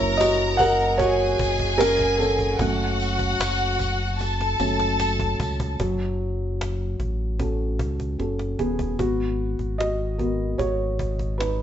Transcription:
Already playing: F#1 F#3 A#3 C#4 E4 A#4 C#5 A#5
0.17 F#4 D#5, cajon slap, tambourine
0.57 A#4 F#5, cajon bass, tambourine
0.98 F#4 G#4 C#5 G#5, cajon bass, tambourine
1.39 F#1, cajon bass, tambourine
1.59 cajon bass
1.78 C#4 A#4, cajon slap, tambourine
1.99 cajon bass
2.18 C#4 A4, tambourine
2.39 cajon bass
2.59 F#1 F#3 A3 C#4 F#4 F#5, cajon bass, tambourine
3.00 tambourine
3.19 cajon bass
3.39 F#1, cajon slap, tambourine
3.79 cajon bass, tambourine
4.19 A4 A5, cajon slap, tambourine
4.41 cajon slap
4.59 F#1 F#3 A3 C#4, cajon slap, tambourine
4.80 cajon slap
4.99 cajon slap, tambourine
5.20 cajon bass
5.39 C#2, cajon bass, tambourine
5.60 cajon bass
5.79 F#1 F#3, cajon bass
6.61 cajon slap
6.99 A1, cajon bass
7.39 C#4 F#4 A4, cajon bass
7.79 C#2, cajon bass
8.00 cajon bass
8.19 F#1 C#4 F#4 A4, cajon slap
8.39 cajon slap
8.59 D#1 B3 G#4, cajon bass
8.79 cajon bass
8.99 G#1 B3 F#4, cajon bass
9.59 G#1, cajon bass
9.78 F#4 D#5, cajon slap
10.18 B3 F#4 A#4, cajon bass
10.58 G#1 F#4 C#5, cajon bass
10.99 cajon bass
11.19 cajon bass
11.38 D#4 B4, cajon slap

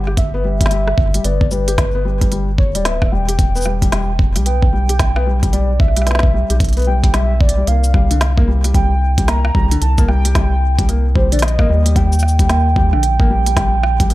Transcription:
Already playing: G1
0.07 G4, cross-stick
0.17 E5, kick, closed hi-hat
0.34 B3
0.44 G3
0.61 G3, kick, closed hi-hat
0.66 snare
0.71 G3, closed hi-hat
0.88 cross-stick
0.98 G1, kick
1.14 G3, closed hi-hat
1.24 G1 B3 D5, closed hi-hat
1.41 kick
1.51 G3 B4, cabasa
1.68 G4, closed hi-hat
1.78 kick, snare, closed hi-hat
1.95 B3
2.05 G3
2.21 G3, kick, closed hi-hat
2.32 G3, closed hi-hat
2.58 C#5, kick
2.75 D1 G3 D5, closed hi-hat
2.85 B3 E5, snare, closed hi-hat
3.02 kick, cross-stick
3.12 E1 G3 G5
3.29 G4, closed hi-hat
3.39 kick, closed hi-hat
3.55 B3, cabasa
3.57 cabasa
3.60 cabasa
3.62 cabasa
3.64 G3, cross-stick, cabasa
3.82 G3, kick, closed hi-hat
3.92 G3, snare, closed hi-hat
4.19 kick
4.36 B1 G3, cross-stick, closed hi-hat
4.46 B3 G5, closed hi-hat
4.63 kick
4.73 G3
4.89 G4, closed hi-hat
4.99 kick, snare, closed hi-hat
5.16 B3, cross-stick
5.26 G3
5.43 G3, kick, closed hi-hat
5.53 G3 D5, closed hi-hat
5.80 E5, kick, cross-stick
5.88 cross-stick
5.96 G3, cross-stick, closed hi-hat
6.02 cross-stick
6.07 B3, snare, closed hi-hat
6.11 snare
6.15 snare
6.19 snare
6.23 kick
6.33 G3
6.50 B1 G4, closed hi-hat
6.60 kick, closed hi-hat
6.64 closed hi-hat
6.69 closed hi-hat
6.73 closed hi-hat
6.77 B3, closed hi-hat
6.79 closed hi-hat
6.82 closed hi-hat
6.87 G3 G5
7.04 G3 G5, kick, closed hi-hat
7.14 G3 E5, snare, closed hi-hat
7.41 D5, kick
7.49 closed hi-hat
7.57 G3
7.67 C2 A#3 F5, closed hi-hat
7.84 cabasa
7.94 G3, kick, cross-stick
8.11 D3, closed hi-hat
8.21 snare, closed hi-hat
8.38 A#3, kick
8.48 G3
8.64 G3, cross-stick, closed hi-hat
8.75 G3 G5, kick, closed hi-hat
9.18 G3, kick, closed hi-hat
9.28 A#3 A#5, snare, closed hi-hat
9.45 cross-stick
9.55 C2 G3, kick
9.71 D3, closed hi-hat
9.82 C2 A5, closed hi-hat
9.98 A#3, kick, cabasa
10.08 G3 G5, cross-stick
10.25 G3, closed hi-hat
10.35 G3, kick, snare, closed hi-hat
10.79 G3, kick, closed hi-hat
10.89 A#3, closed hi-hat
11.16 G3 C5, kick
11.32 A#1 D3 D5, closed hi-hat
11.39 snare, closed hi-hat
11.42 D#5, closed hi-hat
11.48 closed hi-hat
11.59 A#3, kick, cross-stick
11.69 D#2 G3
11.86 G3, closed hi-hat
11.96 G3 G5, kick, closed hi-hat
12.13 cabasa
12.19 cross-stick, cabasa
12.28 cabasa
12.39 G3, kick, closed hi-hat
12.49 A#3, snare, closed hi-hat
12.76 G3, kick
12.93 A#1 D3, cross-stick
13.03 closed hi-hat
13.20 A#3, kick
13.30 G3
13.46 G3, closed hi-hat
13.57 G3, kick, snare, closed hi-hat
13.83 cross-stick
14.00 G3, kick, closed hi-hat
14.10 A#3, closed hi-hat

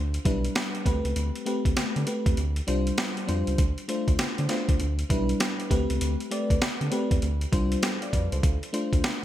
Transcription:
Already playing: D2
0.14 closed hi-hat
0.25 B1 G3 D4 E4 B4, kick, closed hi-hat
0.45 closed hi-hat
0.55 snare, closed hi-hat
0.75 closed hi-hat
0.85 D2 A3 C4 G4 B4, kick, closed hi-hat
1.05 C#2, closed hi-hat
1.16 D2, closed hi-hat
1.36 closed hi-hat
1.46 A3 C4 G4 B4, closed hi-hat
1.65 D2, kick, closed hi-hat
1.77 D3, snare, closed hi-hat
1.96 D3, closed hi-hat
2.06 A3 C4 G4 B4, closed hi-hat
2.26 E2, kick, closed hi-hat
2.37 D2, closed hi-hat
2.56 closed hi-hat
2.67 C2 G3 D4 F4 C5, closed hi-hat
2.87 closed hi-hat
2.98 snare, closed hi-hat
3.17 closed hi-hat
3.27 F2 G3 D4 F4 C5, closed hi-hat
3.47 C#2, closed hi-hat
3.58 D2, kick, closed hi-hat
3.78 closed hi-hat
3.88 A3 D4 F4 C5, closed hi-hat
4.08 D2, kick, closed hi-hat
4.19 D3, snare, closed hi-hat
4.38 D3, closed hi-hat
4.49 A3 D4 F4 C5, snare, closed hi-hat
4.69 D2, kick, closed hi-hat
4.80 D2, closed hi-hat
4.99 closed hi-hat
5.09 B1 G3 D4 E4 B4, kick, closed hi-hat
5.29 closed hi-hat
5.40 snare, closed hi-hat
5.60 closed hi-hat
5.70 D2 A3 C4 G4 B4, kick, closed hi-hat
5.90 C#2, closed hi-hat
6.01 D2, closed hi-hat
6.20 closed hi-hat
6.31 A3 C4 G4 D5, closed hi-hat
6.50 D2, kick, closed hi-hat
6.62 D3, snare, closed hi-hat
6.81 D3, closed hi-hat
6.91 A3 C4 G4 B4, closed hi-hat
7.11 E2, kick, closed hi-hat
7.22 D2, closed hi-hat
7.41 closed hi-hat
7.52 C2 G3 D4 F4 C5, kick, closed hi-hat
7.72 closed hi-hat
7.83 A4 C5, snare, closed hi-hat
8.02 D5 F5, closed hi-hat
8.13 F2 B4 D5, kick, closed hi-hat
8.32 C#2 A4 C5, closed hi-hat
8.43 D2, kick, closed hi-hat
8.63 closed hi-hat
8.73 A3 D4 F4 C5, closed hi-hat
8.93 D2, kick, closed hi-hat
9.04 D3, snare, closed hi-hat

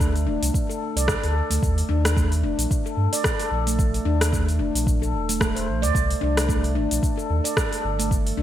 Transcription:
Already playing: D2
0.00 A3, kick, cabasa
0.16 open hi-hat, cabasa
0.26 D1 D4
0.42 C2, open hi-hat, cabasa
0.54 kick, cabasa
0.69 A4, cabasa
0.96 C2 D5, open hi-hat, cabasa
1.08 kick, cross-stick, cabasa
1.23 D2 A4, open hi-hat, cabasa
1.50 D2 A3, open hi-hat, cabasa
1.62 D#2, kick, cabasa
1.78 open hi-hat, cabasa
1.89 D#2 D4
2.05 cross-stick, open hi-hat, cabasa
2.16 A3, kick, cabasa
2.32 open hi-hat, cabasa
2.43 D#1 D4
2.58 A#1, open hi-hat, cabasa
2.71 kick, cabasa
2.86 A4, cabasa
2.97 G2
3.13 D5, open hi-hat, cabasa
3.24 kick, cross-stick, cabasa
3.39 A4, open hi-hat, cabasa
3.51 A#1
3.67 A3, open hi-hat, cabasa
3.79 kick, cabasa
3.94 open hi-hat, cabasa
4.05 D#2 D4
4.21 cross-stick, open hi-hat, cabasa
4.32 A3, kick, cabasa
4.49 open hi-hat, cabasa
4.59 D#1 D4
4.75 A#1, open hi-hat, cabasa
4.87 kick, cabasa
5.02 A4, cabasa
5.14 D#1
5.29 A3, open hi-hat, cabasa
5.40 A3, kick, cross-stick, cabasa
5.55 C5, open hi-hat, cabasa
5.68 A#1
5.82 D#2 D5, open hi-hat, cabasa
5.95 C2, kick, cabasa
6.11 open hi-hat, cabasa
6.21 C2 D4
6.37 cross-stick, open hi-hat, cabasa
6.48 A3, kick, cabasa
6.64 open hi-hat, cabasa
6.75 G1 D4
6.91 A#1, open hi-hat, cabasa
7.03 kick, cabasa
7.17 A4, cabasa
7.30 D#2
7.44 D5, open hi-hat, cabasa
7.57 kick, cross-stick, cabasa
7.72 A4, open hi-hat, cabasa
7.84 G1
7.99 A3, open hi-hat, cabasa
8.11 kick, cabasa
8.27 open hi-hat, cabasa
8.37 C2 D4

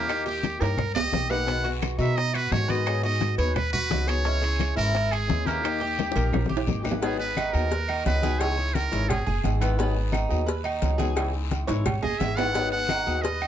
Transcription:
Already playing: D#2 A#3 G4
0.08 D#3 A#3 D#4 G4, high bongo, high conga, high timbale, long guiro, claves
0.26 A#3 D#4 G4, high bongo, high conga
0.43 high bongo, high conga, high timbale, short guiro
0.59 G2 A#3 D#4 G4 A#4, high bongo, high conga, high timbale, short guiro
0.77 muted steel-string acoustic guitar stroke, high bongo, high conga, low conga, long guiro, claves
0.95 C#2 G4 D#5, low timbale
1.11 B1 D#3 A#3 D#4 G4, high bongo, low bongo, high conga, low timbale, short guiro
1.30 A#3 D#4 G4 B4 F#5, high bongo, low timbale, short guiro, claves
1.46 B2 D#3 G#3 B3 F#4, high bongo, high conga, high timbale, long guiro
1.64 G#3 B3 F#4, high conga, high timbale
1.82 high bongo, high conga, high timbale, short guiro, claves
1.98 B2 D#3 G#3 B3 D#4 F#4 E5, high conga, short guiro
2.17 D#5, muted steel-string acoustic guitar stroke, high bongo, high conga, high timbale, long guiro
2.34 F#4 B4, high conga, high timbale, claves
2.52 G#2 D#3 G#3 B3 F#4 C#5, high bongo, low bongo, high conga, low timbale, short guiro
2.68 D#3 G#3 B3 F#4 D#5, high conga, high timbale, short guiro
2.86 D#3 F#3 B3 D#4 G#4, high bongo, high conga, high timbale, long guiro, claves
3.03 B3 D#4 F#4 G#4 D#5, high bongo, high conga
3.21 high bongo, high conga, high timbale, short guiro
3.38 D#2 F#3 B3 D#4 G#4 B4 C#5, high bongo, high conga, high timbale, short guiro
3.55 B4, muted steel-string acoustic guitar stroke, high bongo, high conga, low conga, high timbale, long guiro, claves
3.73 F#4 B4, high conga, low conga
3.90 C#2 F#3 B3 D#4 G#4, high bongo, low bongo, high conga, high timbale, low timbale, short guiro
4.07 F#3 B3 D#4 G#4 C#5, high bongo, high timbale, short guiro, claves
4.24 C#3 E3 G#3 C#4 E4, high bongo, high conga, high timbale, long guiro
4.42 G#3 C#4 E4 G#4, high conga, high timbale
4.59 high bongo, high conga, high timbale, short guiro, claves
4.76 G#1 E3 G#3 C#4 E4 A#4, high conga, short guiro
4.93 muted steel-string acoustic guitar stroke, high bongo, high conga, high timbale, long guiro
5.11 G#4, high conga, high timbale, claves
5.27 D#2 E3 G#3 C#4 E4, high bongo, low bongo, high conga, short guiro
5.45 E3 G#3 A#3 C#4 E4 G4, high conga, high timbale, short guiro
5.62 D#3 A#3 D#4 G4, high bongo, high conga, high timbale, long guiro, claves
5.80 A#3 D#4 G4, high bongo, high conga
5.98 high bongo, high conga, high timbale, short guiro
6.12 D#4 G4 A#4, high bongo, short guiro
6.16 A#1 A#3, high conga, high timbale
6.32 muted steel-string acoustic guitar stroke, low bongo, low conga, high timbale, long guiro, claves
6.46 G4, low bongo
6.50 A#1, high conga
6.57 high timbale
6.67 G#1 D#3 A#3 D#4 G4, low bongo, low conga, short guiro
6.83 A#3 D#4 G4 B4, low conga, short guiro, claves
6.91 low bongo, low timbale
7.01 D#3 F#3 B3 D#4 G#4, cowbell, high conga, low agogo, long guiro
7.18 B3 D#4 G#4 B4, high conga
7.36 D#4, cowbell, high conga, low agogo, short guiro, claves
7.53 D#2 F#3 B3 D#4 G#4 A#4, high conga, low agogo, short guiro
7.70 B4, muted steel-string acoustic guitar stroke, cowbell, high conga, long guiro
7.88 D#4, high conga, low agogo, claves
8.05 C#2 F#3 B3 D#4 G#4 B4, cowbell, high conga, low timbale, low agogo, short guiro
8.22 F#3 B3 D#4 G#4, cowbell, high conga, low agogo, short guiro
8.39 C#3 E3 G#3 D#4 E4 C#5, cowbell, high conga, low agogo, long guiro, claves
8.57 G#3 D#4 E4, high conga
8.74 A#4, cowbell, high conga, low agogo, short guiro
8.92 G#1 E3 G#3 D#4 E4 C#5, cowbell, high conga, short guiro
9.09 G#4, muted steel-string acoustic guitar stroke, cowbell, high conga, low conga, low agogo, long guiro, claves
9.27 F#1 G#4, high conga, low conga
9.43 G#1 E3 G#3 D#4 E4, cowbell, high conga, low timbale, low agogo, short guiro
9.60 E3 G#3 B3 D#4 E4, cowbell, high conga, low agogo, short guiro, claves
9.78 D#3 F#3 B3 D#4 G#4, cowbell, high conga, low agogo, long guiro
9.95 B3 D#4 G#4, high conga
10.12 D#4, cowbell, high conga, low agogo, short guiro, claves
10.29 D#2 F#3 B3 D#4 G#4, high conga, low agogo, short guiro
10.46 B4, muted steel-string acoustic guitar stroke, cowbell, high conga, long guiro
10.64 D#4, high conga, low agogo, claves
10.81 C#2 F#3 B3 D#4 G#4, cowbell, high conga, low agogo, short guiro
10.98 F#3 B3 D#4 G#4, cowbell, high conga, low agogo, short guiro
11.15 C#3 E3 G#3 D#4 E4, cowbell, high conga, low agogo, long guiro, claves
11.33 G#3 D#4 E4, high conga
11.51 cowbell, high conga, low agogo, short guiro
11.67 G#1 E3 G#3 D#4 E4 C#5, cowbell, high conga, high timbale, short guiro
11.85 muted steel-string acoustic guitar stroke, cowbell, high conga, low conga, low agogo, long guiro, claves
12.02 F#1 G#4 D#5, high conga, low conga, low timbale
12.19 G#1 E3 G#3 D#4 E4 E5, cowbell, high conga, low timbale, low agogo, short guiro
12.37 E3 G#3 B3 D#4 E4 F#5, cowbell, low timbale, low agogo, short guiro, claves
12.54 D#3 F#3 B3 D#4 G#4, cowbell, high conga, low agogo, long guiro
12.71 B3 D#4 G#4 F#5, high conga
12.89 D#4, cowbell, high conga, low agogo, short guiro, claves
13.06 D#2 F#3 B3 D#4 G#4, high conga, low agogo, short guiro
13.22 B4 D#5, muted steel-string acoustic guitar stroke, cowbell, high conga, long guiro
13.41 D#4, high conga, low agogo, claves

